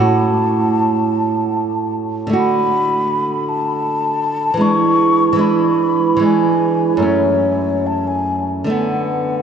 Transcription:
Already playing: nylon-string guitar A2 A3
0.00 nylon-string guitar F#4, flute A5
2.27 nylon-string guitar D3 A3
2.33 nylon-string guitar F#4
2.38 flute B5
3.49 flute A5
4.54 nylon-string guitar E3 G#3
4.61 nylon-string guitar D4, flute C#6
5.33 nylon-string guitar E3 G#3
5.39 nylon-string guitar D4, flute B5
6.17 nylon-string guitar E3 G#3
6.22 nylon-string guitar D4, flute G#5
6.97 nylon-string guitar F#2 A3
7.02 nylon-string guitar C#4, flute C#5
7.87 flute A5
8.07 flute G#5
8.64 nylon-string guitar D3 A3
8.70 nylon-string guitar B3, flute F#5

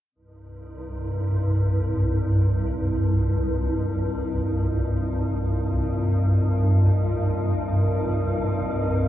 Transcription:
0.12 synth drone C2 G2, ambient pad C4, synth texture D#4 D#5
1.58 ambient pad F4
1.88 ambient pad A#4
5.12 ambient pad D#5

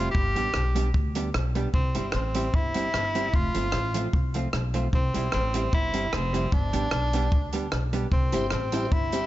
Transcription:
Already playing: tenor saxophone F4
0.11 upright bass G1, tenor saxophone G4, kick
0.36 upright bass A1, hollow-body jazz guitar G3 B3 D4 G4, closed hi-hat
0.54 upright bass B1, cross-stick
0.75 hollow-body jazz guitar G3 B3 D4 G4, closed hi-hat
0.94 upright bass D2, kick
1.15 hollow-body jazz guitar G3 B3 D4 G4, closed hi-hat
1.34 upright bass B1, cross-stick
1.55 hollow-body jazz guitar G3 B3 D4 G4, closed hi-hat
1.74 upright bass C2, tenor saxophone C4, kick
1.95 upright bass G1, hollow-body jazz guitar G3 C4 E4 G4, tenor saxophone C4, closed hi-hat
2.12 upright bass A1, tenor saxophone C4, cross-stick
2.35 hollow-body jazz guitar G3 C4 E4 G4, closed hi-hat
2.54 upright bass G1, tenor saxophone E4, kick
2.74 hollow-body jazz guitar G3 C4 E4 G4, closed hi-hat
2.94 upright bass G1, cross-stick
3.15 hollow-body jazz guitar G3 C4 E4 G4, closed hi-hat
3.34 upright bass F1, tenor saxophone F4, kick
3.54 upright bass G1, hollow-body jazz guitar F3 A3 C4 F4, closed hi-hat
3.72 upright bass A1, cross-stick
3.94 hollow-body jazz guitar F3 A3 C4 F4, closed hi-hat
4.13 upright bass C2, kick
4.34 hollow-body jazz guitar F3 A3 C4 F4, closed hi-hat
4.53 upright bass B1, cross-stick
4.74 hollow-body jazz guitar F3 A3 C4 F4, closed hi-hat
4.93 upright bass C2, tenor saxophone C4, kick
5.14 upright bass B1, hollow-body jazz guitar G3 C4 E4 G4, closed hi-hat
5.32 upright bass A1, tenor saxophone C4, cross-stick
5.54 hollow-body jazz guitar G3 C4 E4 G4, closed hi-hat
5.73 upright bass G1, tenor saxophone E4, kick
5.94 hollow-body jazz guitar G3 C4 E4 G4, closed hi-hat
6.13 upright bass F1, tenor saxophone C4, cross-stick
6.33 hollow-body jazz guitar G3 C4 E4 G4, closed hi-hat
6.52 upright bass G1, tenor saxophone D4, kick
6.73 upright bass A1, hollow-body jazz guitar G3 B3 D4 G4, closed hi-hat
6.91 upright bass B1, cross-stick
7.13 hollow-body jazz guitar G3 B3 D4 G4, closed hi-hat
7.32 upright bass D2, kick
7.53 hollow-body jazz guitar G3 B3 D4 G4, closed hi-hat
7.72 upright bass B1, cross-stick
7.93 hollow-body jazz guitar G3 B3 D4 G4, closed hi-hat
8.12 upright bass C2, tenor saxophone C4, kick
8.32 upright bass G1, hollow-body jazz guitar G3 C4 E4 G4, tonewheel organ E4 G4 C5, closed hi-hat
8.51 upright bass A1, tenor saxophone C4, cross-stick
8.72 hollow-body jazz guitar G3 C4 E4 G4, tonewheel organ E4 G4 C5, closed hi-hat
8.92 upright bass G1, tenor saxophone E4, kick
9.12 hollow-body jazz guitar G3 C4 E4 G4, tonewheel organ E4 G4 C5, closed hi-hat

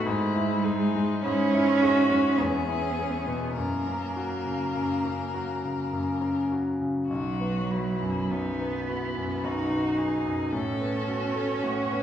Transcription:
0.05 grand piano G#2, cello G#3, violin E4
0.35 grand piano E4
0.64 violin D#4, grand piano G#4
0.95 grand piano G#3
1.23 grand piano G#2, cello C#4, violin E4
1.54 grand piano E4
1.81 violin F#4, grand piano G#4
2.10 grand piano G#3
2.37 grand piano E2, cello B3, violin G#4
2.47 cello C#4
2.56 cello B3
2.64 cello C#4, grand piano E4
2.74 cello B3
2.82 cello C#4
2.91 cello B3
2.99 cello C#4, grand piano G#4
3.11 cello B3
3.18 cello C#4
3.26 grand piano B2, cello B3
3.54 grand piano F#2, violin A#4
3.59 cello A#3
3.87 grand piano C#4
4.16 grand piano F#4
4.46 grand piano C#3
4.75 grand piano F#2
5.05 grand piano C#4
5.34 grand piano F#4
5.64 grand piano C#3
5.93 grand piano F#2
6.21 grand piano C#4
6.52 grand piano F#4
6.81 grand piano C#3
7.08 grand piano B1, cello F#3, violin F#4
7.41 grand piano B3
7.71 violin E4, grand piano F#4
8.02 grand piano F#2
8.31 grand piano B1, cello B3, violin D#4
8.61 grand piano B3
8.88 violin E4, grand piano F#4
9.16 grand piano F#2
9.44 grand piano B1, cello D#4, violin F#4
9.72 grand piano B3
9.98 grand piano F#4, violin G#4
10.26 grand piano F#2
10.52 grand piano A2, cello C#4, violin A4
10.80 grand piano B3
11.08 grand piano F#4
11.36 grand piano A3
11.63 grand piano A2, violin F#4
11.91 grand piano B3

